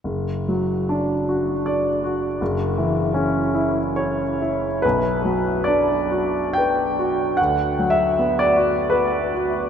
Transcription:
\new Staff \with { instrumentName = "Grand piano" } { \time 3/4 \key b \minor \tempo 4 = 75 << { r2. | r2. | b'4 d''4 g''4 | \tuplet 3/2 { fis''4 e''8~ e''8 d''4 } b'4 | } \\ { fis,,8 fis8 d'8 fis'8 d''8 fis'8 | fis,,8 e8 cis'8 e'8 cis''8 e'8 | b,,8 fis8 d'8 fis'8 b'8 fis'8 | d,8 fis8 b8 fis'4 fis'8 | } >> }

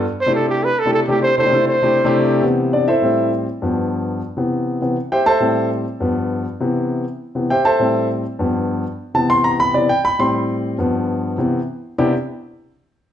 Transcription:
<<
  \new Staff \with { instrumentName = "Trumpet" } { \time 4/4 \key c \major \tempo 4 = 201 r8 c''8 a'8 g'8 b'8 a'8 a'8 g'8 | c''8 c''4 c''2 r8 | r1 | r1 |
r1 | r1 | r1 | r1 |
r1 | r1 | r1 | }
  \new Staff \with { instrumentName = "Grand piano" } { \time 4/4 \key c \major r8. <c a d' e' g'>4. r8 <c a d' e' g'>8 r16 <c a d' e' g'>8~ | <c a d' e' g'>16 r16 <c a d' e' a'>16 <c a d' e' g'>16 <c a d' e' a'>8. r16 <c a d' e' g'>8 r16 <c a d' e' g'>4~ <c a d' e' g'>16 | r4 <d' d''>8 <e' a' c'' e''>4. r4 | r1 |
r4 <g' c'' e'' g''>8 <a' c'' e'' a''>4. r4 | r1 | r4 <g' c'' e'' g''>8 <a' c'' e'' a''>4. r4 | r2 r8 a''8 c'''8 bes''8 |
b''8 d''8 g''8 b''8 c'''2 | r1 | <c b d' e' g'>8 r2. r8 | }
  \new Staff \with { instrumentName = "Grand piano" } { \clef bass \time 4/4 \key c \major r1 | r1 | <c e b>4. r8 <a, g c'>4. r8 | <g, f b>2 r8 <c e b>4. |
<c e b>8 r4. <a, g c'>4. r8 | <g, f b>4. r8 <c e b>4. r8 | r8 <c e b>8 r4 <a, g c'>4. r8 | <g, f b>4. r4 <c e b>4.~ |
<c e b>8 <c e b>8 r4 <a, g c'>2 | <g, f b>2 <c e b>8 r4. | r1 | }
>>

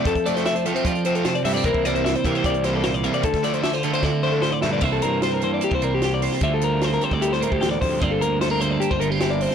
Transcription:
<<
  \new Staff \with { instrumentName = "Clean electric guitar" } { \time 4/4 \key c \mixolydian \tempo 4 = 151 a'8 d''16 c''16 e''16 c''16 a'16 c''16 d''8 c''16 a'16 c''16 d''16 e''16 d''16 | bes'8 d''16 c''16 e''16 c''16 bes'16 c''16 d''8 c''16 a'16 c''16 d''16 e''16 d''16 | a'8 d''16 c''16 e''16 c''16 a'16 c''16 d''8 c''16 a'16 c''16 d''16 e''16 d''16 | e''16 a'16 bes'8 c''16 bes'16 c''16 d''16 g'16 c''16 bes'16 g'16 g'16 d''16 c''8 |
e''16 a'16 bes'8 c''16 bes'16 c''16 d''16 g'16 c''16 bes'16 g'16 g'16 d''16 c''8 | d''16 a'16 bes'8 c''16 bes'16 c''16 d''16 g'16 c''16 bes'16 g'16 g'16 d''16 c''8 | }
  \new Staff \with { instrumentName = "Clean electric guitar" } { \time 4/4 \key c \mixolydian << { r8 a8 e'8 a16 c'16 f'4. g16 a16 | <e bes c' e'>8 bes8 e'8 c'8 g'2 | r8 a8 d'16 f'16 a16 c'16 e'2 | <e bes c' e'>8 bes8 c'8 bes8 d'16 e'16 c'8 g'8 c'8 |
<d g c' f'>8 g8 c'8 g8 e'8 c'4. | <d bes c' f'>8 bes8 a16 c'16 bes8 d'16 f'16 a16 c'16 e'8 c'8 | } \\ { r4. f4. c4 | c4. e4. bes,8 c8 | d,4. d4. a,8 bes,8 | c4. e4 c4. |
d,4. d4 a,8 e,8 f,8 | g,4. d4 d4. | } >> }
  \new Staff \with { instrumentName = "Overdriven electric guitar" } { \clef bass \time 4/4 \key c \mixolydian <c f a c'>8 <c f a c'>8 r8 <c f a c'>8 r8 <c f a c'>8 r8 <c f a c'>8 | r8 <c g bes e'>8 r8 <c g bes e'>8 r8 <c g bes e'>8 r8 <c g bes e'>8 | r8 <d f a d'>8 r8 <d f a d'>8 r8 <d f a d'>8 r8 <d f a d'>8 | r1 |
r1 | r1 | }
  \new Staff \with { instrumentName = "Fingered electric bass" } { \clef bass \time 4/4 \key c \mixolydian f,16 f4.~ f16 f4. g,8 | c,16 c,4~ c,16 c8 c,2 | d,16 d4.~ d16 d4. g,8 | c,8 g,4.~ g,16 c,4.~ c,16 |
d,4.~ d,16 d,4 d,8. d,8 | g,,8 d,4.~ d,16 g,,4.~ g,,16 | }
  \new DrumStaff \with { instrumentName = "Drums" } \drummode { \time 4/4 <hh bd>16 <hh bd>16 hh16 <hh sn>16 <hh sn>16 hh16 hh16 hh16 <hh bd>16 hh16 hh16 hh16 <hh sn>16 hh16 hho8 | <hh bd>16 bd16 <hh sn>16 hh16 <hh sn>16 hh16 <hh bd>16 hh16 <hh bd>16 hh16 <hh sn>8 <hh sn>16 hh16 hh16 hh16 | <hh bd>16 <hh bd sn>16 <hh sn>16 hh16 <hh sn>16 <hh sn>16 hh16 hh16 <bd sn>4 sn8 sn8 | <cymc bd>8 hh8 <hh sn>8 hh8 hh16 bd16 hh8 <hh sn>8 hho16 sn16 |
<hh bd>8 hh8 <hh sn>16 sn16 hh16 bd16 hh16 sn16 hh16 bd16 <hh sn>8 <hho bd>8 | <hh bd>8 hh8 <hh sn>8 hh8 hh16 bd16 hh8 <hh sn>8 hho16 sn16 | }
>>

